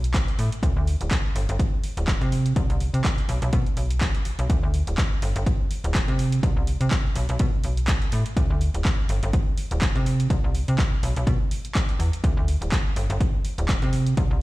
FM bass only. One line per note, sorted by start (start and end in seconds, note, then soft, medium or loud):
0.00 0.24 B1 medium
0.39 0.50 A2 medium
0.63 0.74 D2 loud
0.76 0.96 D2 loud
1.01 1.09 D1 medium
1.35 1.47 G1 medium
1.49 1.58 G1 loud
1.97 2.17 D1 medium
2.21 2.53 C3 loud
2.56 2.67 C2 loud
2.70 2.89 C2 loud
2.94 3.03 C3 medium
3.29 3.40 B1 loud
3.42 3.51 B1 loud
3.53 3.64 B2 loud
3.77 4.11 B1 medium
4.25 4.36 B1 soft
4.39 4.48 B1 medium
4.63 4.83 D2 loud
4.87 4.96 D1 medium
5.22 5.34 G1 loud
5.36 5.45 G1 loud
5.84 6.04 D1 medium
6.08 6.40 C3 loud
6.43 6.54 C2 loud
6.56 6.76 C2 loud
6.81 6.90 C3 medium
7.16 7.27 B1 loud
7.29 7.38 B1 loud
7.40 7.51 B2 loud
7.64 7.98 B1 medium
8.13 8.24 A2 medium
8.37 8.48 D2 loud
8.50 8.70 D2 loud
8.74 8.83 D1 medium
9.09 9.21 G1 medium
9.23 9.32 G1 loud
9.71 9.91 D1 medium
9.96 10.28 C3 loud
10.30 10.41 C2 loud
10.44 10.64 C2 loud
10.68 10.77 C3 medium
11.03 11.14 B1 medium
11.17 11.25 B1 loud
11.27 11.38 B2 loud
11.99 12.11 E2 medium
12.24 12.35 D2 loud
12.37 12.57 D2 loud
12.61 12.70 D1 medium
12.96 13.08 G1 loud
13.10 13.19 G1 loud
13.58 13.78 D1 medium
13.82 14.15 C3 loud
14.17 14.29 C2 loud
14.31 14.42 C2 loud